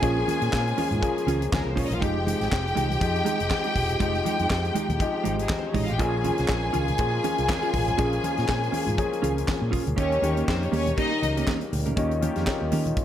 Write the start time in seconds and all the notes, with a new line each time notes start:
Already playing: C#3 F3 G#3 A#3 C#4 F4 G#4 A#4 G#5
0.02 A#1 F3 A#3 C#4 F4 G#4, kick, closed hi-hat
0.27 C#4 F4 G#4, closed hi-hat, muted conga, high conga
0.41 A#2 C#4 F4 G#4, closed hi-hat
0.53 A#2, muted clean electric guitar stroke, kick, snare, clap, muted conga
0.67 muted clean electric guitar stroke, closed hi-hat
0.77 C#4 F4 G#4, open hi-hat, high conga
0.91 G#2, closed hi-hat, high conga, low conga
1.01 F3 A#3 C#4 G#4, kick, closed hi-hat
1.17 muted clean electric guitar stroke, closed hi-hat
1.27 C#2 C#4 F4 G#4, closed hi-hat, muted conga, high conga
1.41 muted clean electric guitar stroke, closed hi-hat
1.53 C#2 G#3 G#4, kick, snare, clap, muted conga, high conga
1.61 A#3 A#4
1.65 C2 C4 C5, muted clean electric guitar stroke
1.76 C#4 F4 G#4 C#5, kick, open hi-hat, low conga
1.85 D#4 D#5
1.90 A#1 F4 F5, muted clean electric guitar stroke, closed hi-hat, low conga
2.01 F1 C3 F3 G#3 D#4 G4 G5, kick, closed hi-hat, muted conga
2.26 G#3 D#4 G4, closed hi-hat, muted conga, high conga
2.40 G#1 G#3 D#4 G4, snare, closed hi-hat
2.52 F1, kick, snare, clap, muted conga
2.65 muted clean electric guitar stroke, closed hi-hat
2.75 C2 G#3 D#4 G4, closed hi-hat, high conga
2.90 muted clean electric guitar stroke, closed hi-hat, high conga, low conga
3.00 F2 F3 G#3 D#4 G4, kick, closed hi-hat, muted conga
3.15 muted clean electric guitar stroke, closed hi-hat
3.24 G#3 D#4 G4, closed hi-hat, muted conga, high conga
3.40 F1, muted clean electric guitar stroke, closed hi-hat
3.50 muted clean electric guitar stroke, kick, snare, clap, muted conga, high conga
3.64 G#3 D#4 G4, closed hi-hat
3.76 E1, muted clean electric guitar stroke, kick, open hi-hat, muted conga, low conga
3.89 muted clean electric guitar stroke, closed hi-hat, low conga
3.99 F1 F3 G#3 D#4 G4, kick, closed hi-hat
4.15 closed hi-hat
4.25 G#3 D#4 G4, closed hi-hat, muted conga, high conga
4.38 F2 G#3 D#4 G4, closed hi-hat
4.50 F2, muted clean electric guitar stroke, kick, snare, clap
4.64 muted clean electric guitar stroke, closed hi-hat
4.74 G#3 D#4 G4, closed hi-hat, high conga
4.89 D#2, muted clean electric guitar stroke, closed hi-hat, high conga, low conga
5.00 F3 G#3 D#4 G4, kick, closed hi-hat
5.13 muted clean electric guitar stroke
5.23 G#1 G#3 D#4 G4, closed hi-hat, muted conga, high conga
5.37 muted clean electric guitar stroke, closed hi-hat
5.42 G#3 G#4
5.49 A#3 A#4, kick, snare, clap, muted conga, high conga
5.58 C4 C5
5.63 C#4, muted clean electric guitar stroke
5.67 C#5
5.73 A1 G#3 D#4 G4 D#5, kick, open hi-hat, muted conga, low conga
5.84 F4 F5, muted clean electric guitar stroke, closed hi-hat
5.89 G4 G5, low conga
5.98 A#1 C#3 F3 G#3 A#3 C#4 F4 G#4 G#5, kick, closed hi-hat
6.24 C#4 F4 G#4, closed hi-hat, muted conga, high conga
6.38 C2 C#4 F4 G#4, snare, closed hi-hat
6.48 A#1, kick, snare, clap, muted conga
6.63 muted clean electric guitar stroke
6.73 C#2 C#4 F4 G#4, closed hi-hat, muted conga, high conga
6.87 muted clean electric guitar stroke, closed hi-hat, high conga, low conga
6.98 A#2 F3 A#3 C#4 G#4, kick, closed hi-hat, muted conga
7.12 muted clean electric guitar stroke
7.24 C#4 F4 G#4, closed hi-hat, high conga
7.38 C2, muted clean electric guitar stroke, closed hi-hat
7.49 muted clean electric guitar stroke, kick, snare, clap, muted conga, high conga
7.62 C#4 F4 G#4, closed hi-hat
7.74 A1, kick, open hi-hat, low conga
7.88 muted clean electric guitar stroke, closed hi-hat, low conga
7.98 A#1 F3 A#3 C#4 F4 G#4, kick, closed hi-hat, muted conga
8.13 closed hi-hat
8.23 C#4 F4 G#4, closed hi-hat, muted conga, high conga
8.37 A#2 C#4 F4 G#4, snare, closed hi-hat
8.48 A#2, muted clean electric guitar stroke, kick, snare, clap
8.61 muted clean electric guitar stroke, closed hi-hat
8.72 C#4 F4 G#4, open hi-hat, muted conga, high conga
8.85 G#2, muted clean electric guitar stroke, closed hi-hat, high conga, low conga
8.97 F3 A#3 C#4 G#4, kick, closed hi-hat, muted conga
9.12 muted clean electric guitar stroke, closed hi-hat
9.22 C#2 C#4 F4 G#4, closed hi-hat, muted conga, high conga
9.35 muted clean electric guitar stroke, closed hi-hat
9.48 kick, snare, clap, muted conga, high conga
9.61 A#2, muted clean electric guitar stroke
9.71 C#4 F4 G#4, kick, open hi-hat, muted conga, low conga
9.85 D2, muted clean electric guitar stroke, closed hi-hat, low conga
9.96 D#2 C#3 D#3 G3 A#3 C#4 D#4 G4 C#5, kick, closed hi-hat
10.12 closed hi-hat
10.21 D#2 D#3 A#3 C#4 G4, closed hi-hat, high conga
10.35 A#3 C#4 G4, closed hi-hat
10.48 F2 C4 C5, kick, snare, clap
10.61 C#4 C#5, muted clean electric guitar stroke, closed hi-hat
10.72 D#2 A#3 C#4 G4 C#5, open hi-hat, high conga
10.87 muted clean electric guitar stroke, closed hi-hat, high conga, low conga
10.97 A#3 C#4 D#4 G4 D#5, kick, closed hi-hat, muted conga
11.12 muted clean electric guitar stroke
11.22 C#2, muted clean electric guitar stroke, closed hi-hat, muted conga, high conga
11.37 A#3 C#4 G4, closed hi-hat
11.47 A#3 C#4 A#4, kick, snare, clap, muted conga, high conga
11.61 muted clean electric guitar stroke, closed hi-hat
11.72 D2, muted clean electric guitar stroke, open hi-hat, muted conga, low conga
11.86 A#3 C#4 A#4, closed hi-hat, low conga
11.96 D#2 D#3 A#3 C#4 D#4 F4 G4, kick, closed hi-hat, muted conga
12.11 closed hi-hat
12.21 D#3 A#3 C#4 G4, closed hi-hat, muted conga, high conga
12.36 F2 A#3 C#4 G4, snare, closed hi-hat
12.47 kick, snare, clap, muted conga
12.61 D#2, muted clean electric guitar stroke
12.72 D#3 A#3 C#4 G4, open hi-hat, muted conga, high conga
12.86 muted clean electric guitar stroke, closed hi-hat, high conga, low conga
12.97 kick, closed hi-hat, muted conga